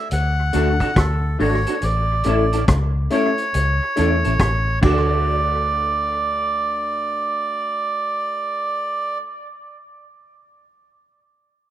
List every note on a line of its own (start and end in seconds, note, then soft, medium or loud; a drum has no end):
0.11 0.50 D2 loud
0.11 1.00 F#5 loud
0.11 closed hi-hat medium
0.53 0.79 D2 medium
0.53 0.71 A3 medium
0.53 0.71 D4 medium
0.53 0.71 F#4 loud
0.53 0.71 F#4 medium
0.53 0.71 A4 loud
0.53 0.71 A4 medium
0.53 closed hi-hat medium
0.80 0.89 D4 medium
0.80 0.89 F#4 medium
0.80 0.89 A4 medium
0.80 kick medium
0.80 closed hi-hat soft
0.96 1.36 D2 medium
0.96 1.38 A4 medium
0.96 kick loud
0.96 cross-stick loud
0.96 closed hi-hat medium
1.39 1.64 G#1 medium
1.39 1.56 A3 medium
1.39 1.57 D4 medium
1.39 1.57 F#4 medium
1.39 1.57 A4 medium
1.39 1.84 C#5 loud
1.39 open hi-hat soft
1.67 1.75 D4 medium
1.67 1.75 F#4 medium
1.67 1.75 A4 medium
1.67 closed hi-hat medium
1.82 2.21 A1 loud
1.82 2.65 D5 medium
1.82 closed hi-hat medium
2.24 2.65 A1 medium
2.24 2.42 A3 medium
2.24 2.42 C#4 medium
2.24 2.43 E4 medium
2.24 2.43 A4 loud
2.24 2.43 A4 medium
2.24 closed hi-hat medium
2.53 2.61 C#4 soft
2.53 2.61 E4 medium
2.53 2.60 A4 medium
2.53 closed hi-hat medium
2.68 3.07 C#2 loud
2.68 kick loud
2.68 cross-stick loud
2.68 closed hi-hat medium
3.10 3.28 A3 loud
3.10 3.28 C#4 medium
3.10 3.28 E4 medium
3.10 3.29 E4 medium
3.10 3.29 A4 loud
3.10 3.29 A4 medium
3.10 4.79 C#5 loud
3.10 closed hi-hat medium
3.38 closed hi-hat soft
3.54 3.79 C#2 medium
3.54 closed hi-hat loud
3.96 4.22 E2 medium
3.96 4.14 A3 medium
3.96 4.14 C#4 medium
3.96 4.14 C#4 loud
3.96 4.14 E4 medium
3.96 4.14 A4 loud
3.96 4.15 A4 loud
3.96 closed hi-hat medium
4.24 4.39 A1 medium
4.24 4.33 C#4 soft
4.24 4.32 E4 medium
4.24 4.32 A4 medium
4.24 closed hi-hat soft
4.40 4.79 A1 medium
4.40 kick medium
4.40 cross-stick loud
4.40 closed hi-hat medium
4.81 9.17 D2 loud
4.81 9.16 A3 medium
4.81 9.19 D4 medium
4.81 9.16 D4 medium
4.81 9.17 F#4 medium
4.81 9.22 F#4 medium
4.81 9.17 A4 medium
4.81 9.18 D5 loud
4.81 kick loud
4.81 crash medium
4.86 9.24 A4 medium